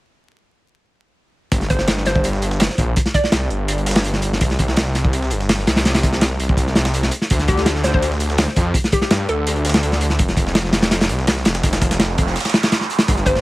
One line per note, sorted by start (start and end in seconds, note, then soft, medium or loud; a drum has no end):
1.52 2.68 G1 loud
1.52 kick loud
1.52 closed hi-hat medium
1.61 snare soft
1.61 closed hi-hat soft
1.70 1.92 C5 medium
1.70 kick medium
1.70 closed hi-hat medium
1.78 snare soft
1.88 snare loud
1.88 closed hi-hat medium
1.97 snare soft
2.06 2.28 C5 medium
2.06 snare soft
2.06 closed hi-hat medium
2.16 kick loud
2.24 closed hi-hat medium
2.33 snare medium
2.42 closed hi-hat medium
2.51 snare medium
2.60 snare loud
2.60 closed hi-hat medium
2.60 open hi-hat medium
2.70 snare soft
2.78 2.94 A#1 loud
2.78 kick loud
2.78 closed hi-hat medium
2.96 kick loud
2.96 closed hi-hat medium
3.06 snare medium
3.06 closed hi-hat soft
3.14 3.51 D5 medium
3.14 kick medium
3.14 closed hi-hat medium
3.24 snare soft
3.32 3.49 C2 loud
3.32 snare loud
3.32 closed hi-hat medium
3.50 4.43 G1 medium
3.50 closed hi-hat medium
3.68 closed hi-hat medium
3.78 closed hi-hat soft
3.86 snare medium
3.86 closed hi-hat medium
3.91 snare medium
3.91 closed hi-hat medium
3.96 snare loud
3.96 closed hi-hat medium
4.05 closed hi-hat medium
4.13 snare soft
4.22 closed hi-hat medium
4.33 snare soft
4.41 5.33 C2 medium
4.41 kick loud
4.41 closed hi-hat medium
4.50 snare soft
4.50 closed hi-hat soft
4.59 kick medium
4.59 closed hi-hat medium
4.68 snare soft
4.76 snare loud
4.76 closed hi-hat medium
4.85 snare soft
4.95 snare soft
4.95 closed hi-hat medium
5.04 kick loud
5.13 closed hi-hat medium
5.22 snare medium
5.30 5.66 G1 medium
5.30 closed hi-hat medium
5.41 snare medium
5.49 snare loud
5.49 closed hi-hat medium
5.49 open hi-hat medium
5.59 snare soft
5.67 6.38 C2 medium
5.67 snare loud
5.67 closed hi-hat medium
5.76 snare loud
5.76 closed hi-hat medium
5.85 snare loud
5.85 closed hi-hat medium
5.95 snare loud
5.95 closed hi-hat soft
5.95 closed hi-hat medium
6.03 kick medium
6.03 closed hi-hat medium
6.13 snare medium
6.13 snare soft
6.21 snare loud
6.21 closed hi-hat medium
6.40 6.74 C2 medium
6.40 closed hi-hat medium
6.49 kick loud
6.57 kick medium
6.57 closed hi-hat medium
6.67 snare soft
6.75 7.11 C2 loud
6.75 snare loud
6.75 closed hi-hat medium
6.85 snare loud
6.85 snare soft
6.94 closed hi-hat medium
7.03 snare soft
7.11 closed hi-hat medium
7.22 snare soft
7.30 8.47 D2 loud
7.30 kick loud
7.30 closed hi-hat medium
7.39 snare soft
7.39 closed hi-hat soft
7.48 7.70 G4 medium
7.48 kick medium
7.48 closed hi-hat medium
7.57 snare soft
7.66 snare loud
7.66 closed hi-hat medium
7.76 snare soft
7.84 7.90 C5 medium
7.84 snare soft
7.84 closed hi-hat medium
7.94 7.99 C5 medium
7.94 kick medium
8.02 closed hi-hat medium
8.12 snare medium
8.20 closed hi-hat medium
8.30 snare medium
8.38 snare loud
8.38 closed hi-hat medium
8.38 open hi-hat medium
8.48 snare soft
8.56 8.73 F2 loud
8.56 kick loud
8.56 closed hi-hat medium
8.74 kick loud
8.74 closed hi-hat medium
8.84 snare medium
8.84 closed hi-hat soft
8.92 8.99 G4 medium
8.92 kick medium
8.92 closed hi-hat medium
9.01 9.08 G4 medium
9.01 snare medium
9.01 snare soft
9.11 9.27 G2 loud
9.11 snare loud
9.11 closed hi-hat medium
9.29 10.21 D2 medium
9.29 9.56 A4 medium
9.29 closed hi-hat medium
9.47 closed hi-hat medium
9.56 closed hi-hat soft
9.65 snare medium
9.65 closed hi-hat medium
9.70 snare medium
9.70 closed hi-hat medium
9.74 snare loud
9.74 closed hi-hat medium
9.83 closed hi-hat medium
9.92 snare soft
10.01 closed hi-hat medium
10.10 snare soft
10.19 11.11 F1 medium
10.19 kick loud
10.19 closed hi-hat medium
10.28 snare soft
10.28 closed hi-hat soft
10.37 kick medium
10.37 closed hi-hat medium
10.47 snare soft
10.55 snare loud
10.55 closed hi-hat medium
10.64 snare soft
10.73 snare loud
10.73 closed hi-hat medium
10.82 snare loud
10.82 closed hi-hat medium
10.91 snare loud
10.91 closed hi-hat medium
11.01 snare medium
11.01 snare loud
11.01 closed hi-hat medium
11.09 11.44 C2 medium
11.09 closed hi-hat medium
11.19 snare medium
11.27 snare loud
11.27 closed hi-hat medium
11.27 open hi-hat medium
11.37 snare soft
11.45 12.17 F1 medium
11.45 snare loud
11.45 closed hi-hat medium
11.55 snare loud
11.55 closed hi-hat medium
11.63 kick loud
11.63 snare loud
11.63 closed hi-hat loud
11.63 closed hi-hat medium
11.63 noise sweep medium
11.73 snare medium
11.73 snare loud
11.73 closed hi-hat medium
11.81 kick loud
11.81 snare loud
11.81 closed hi-hat medium
11.91 snare soft
11.91 snare loud
11.91 closed hi-hat medium
11.99 snare loud
11.99 closed hi-hat medium
12.18 12.36 F1 medium
12.18 kick loud
12.18 closed hi-hat medium
12.27 snare soft
12.36 snare medium
12.36 closed hi-hat medium
12.40 snare medium
12.40 closed hi-hat medium
12.45 snare soft
12.45 snare medium
12.45 closed hi-hat medium
12.50 snare medium
12.50 closed hi-hat medium
12.54 snare loud
12.54 closed hi-hat medium
12.63 snare loud
12.72 snare loud
12.72 closed hi-hat medium
12.81 snare soft
12.90 closed hi-hat medium
12.99 snare loud
12.99 closed hi-hat medium
13.08 13.41 G1 loud
13.08 kick loud
13.08 closed hi-hat medium
13.17 snare soft
13.17 closed hi-hat soft
13.26 13.41 C5 medium
13.26 kick medium
13.26 closed hi-hat medium
13.35 snare soft